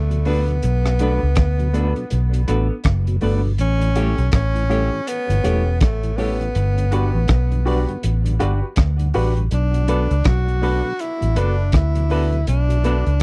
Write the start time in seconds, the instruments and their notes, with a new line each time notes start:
Already playing: fingered electric bass D2, tenor saxophone A3
0.10 tonewheel organ B2 F#3, closed hi-hat
0.25 clean electric guitar A3 D4 F#4 B4, tonewheel organ A3 B3 D4, upright piano B3 D4 A4, tenor saxophone B3, open hi-hat
0.48 tonewheel organ B2 F#3, closed hi-hat
0.62 fingered electric bass B1, closed hi-hat
0.85 tonewheel organ B2 F#3, cross-stick, closed hi-hat
0.99 tonewheel organ A3 B3 D4, clean electric guitar A3 D4 F#4 B4, upright piano B3 D4 A4, closed hi-hat
1.23 fingered electric bass C#2
1.35 fingered electric bass D2, kick, cross-stick, closed hi-hat
1.59 tonewheel organ B2 F#3, closed hi-hat
1.73 tonewheel organ A3 B3 D4, clean electric guitar A3 D4 F#4 B4, upright piano B3 D4 A4, closed hi-hat
1.96 tonewheel organ B2 F#3, closed hi-hat
2.10 fingered electric bass B1, closed hi-hat
2.33 tonewheel organ B2 F#3, closed hi-hat
2.48 fingered electric bass A1, clean electric guitar A3 D4 F#4 B4, tonewheel organ A3 B3 D4, upright piano B3 D4 A4, closed hi-hat
2.84 fingered electric bass F#1, kick, cross-stick, closed hi-hat
3.07 tonewheel organ B2 F#3, closed hi-hat
3.21 fingered electric bass G1, clean electric guitar A3 D4 F#4 B4, tonewheel organ A3 B3 D4, upright piano B3 D4 A4, open hi-hat
3.44 tonewheel organ B2 F#3
3.58 fingered electric bass A1, tenor saxophone C#4, closed hi-hat
3.81 tonewheel organ A2 E3, closed hi-hat
3.95 tonewheel organ G3 A3 C#4, clean electric guitar A3 E4 G4 C#5, upright piano C#4 G4 A4, closed hi-hat
4.18 fingered electric bass B1, closed hi-hat
4.32 fingered electric bass A1, tenor saxophone C#4, kick, cross-stick, closed hi-hat
4.55 tonewheel organ A2 E3, closed hi-hat
4.69 tonewheel organ G3 A3 C#4, clean electric guitar A3 E4 G4 C#5, upright piano C#4 G4 A4, closed hi-hat
4.92 tonewheel organ A2 E3
5.07 tenor saxophone B3, closed hi-hat
5.29 fingered electric bass G1, tonewheel organ A2 E3, closed hi-hat
5.43 fingered electric bass E1, tonewheel organ G3 A3 C#4, clean electric guitar A3 E4 G4 C#5, upright piano C#4 G4 A4, closed hi-hat
5.81 fingered electric bass A1, tenor saxophone A3, kick, cross-stick, closed hi-hat
6.03 tonewheel organ A2 E3, closed hi-hat
6.17 tonewheel organ G3 A3 C#4, clean electric guitar A3 E4 G4 C#5, tenor saxophone B3, upright piano C#4 G4 A4, open hi-hat
6.41 tonewheel organ A2 E3, closed hi-hat
6.55 fingered electric bass G1, closed hi-hat
6.78 tonewheel organ G2 D3, closed hi-hat
6.91 tonewheel organ G3 B3 F#4, clean electric guitar D4 F#4 B4 D5, upright piano F#4 G4 B4, closed hi-hat
7.15 fingered electric bass A1
7.28 fingered electric bass B1, kick, cross-stick, closed hi-hat
7.52 tonewheel organ G2 D3, closed hi-hat
7.65 tonewheel organ G3 B3 F#4, clean electric guitar D4 F#4 B4 D5, upright piano F#4 G4 B4, open hi-hat
7.88 tonewheel organ G2 D3, closed hi-hat
8.03 fingered electric bass A1, closed hi-hat
8.26 tonewheel organ G2 D3, closed hi-hat
8.39 fingered electric bass G1, tonewheel organ G3 B3 F#4, clean electric guitar D4 F#4 B4 D5, upright piano F#4 G4 B4, closed hi-hat
8.76 fingered electric bass D2, kick, cross-stick, closed hi-hat
8.99 tonewheel organ G2 D3, closed hi-hat
9.14 fingered electric bass A1, tonewheel organ G3 B3 F#4, clean electric guitar D4 F#4 B4 D5, upright piano F#4 G4 B4, open hi-hat
9.37 tonewheel organ G2 D3, closed hi-hat
9.51 fingered electric bass B1, tenor saxophone D4, closed hi-hat
9.74 tonewheel organ B2 F#3, closed hi-hat
9.87 tonewheel organ A3 B3 D4, clean electric guitar B3 F#4 A4 D5, upright piano D4 A4 B4, closed hi-hat
10.11 fingered electric bass C#2, closed hi-hat
10.24 fingered electric bass B1, tenor saxophone F#4, kick, cross-stick, closed hi-hat
10.48 tonewheel organ B2 F#3, closed hi-hat
10.61 tonewheel organ A3 B3 D4, clean electric guitar B3 F#4 A4 D5, upright piano D4 A4 B4, open hi-hat
10.84 tonewheel organ B2 F#3
10.99 tenor saxophone E4, closed hi-hat
11.21 fingered electric bass A1, tonewheel organ B2 F#3, closed hi-hat
11.36 fingered electric bass F#1, tonewheel organ A3 B3 D4, clean electric guitar B3 F#4 A4 D5, upright piano D4 A4 B4, tenor saxophone D4, closed hi-hat
11.72 fingered electric bass D2, tenor saxophone E4, kick, cross-stick, closed hi-hat
11.94 tonewheel organ B2 F#3, closed hi-hat
12.09 tonewheel organ A3 B3 D4, clean electric guitar B3 F#4 A4 D5, upright piano D4 A4 B4, open hi-hat
12.31 tonewheel organ B2 F#3, closed hi-hat
12.47 fingered electric bass B1, tenor saxophone D4, closed hi-hat
12.68 tonewheel organ B2 F#3, closed hi-hat
12.83 tonewheel organ A3 B3 D4, clean electric guitar B3 F#4 A4 D5, upright piano D4 A4 B4, closed hi-hat
13.06 fingered electric bass C#2, closed hi-hat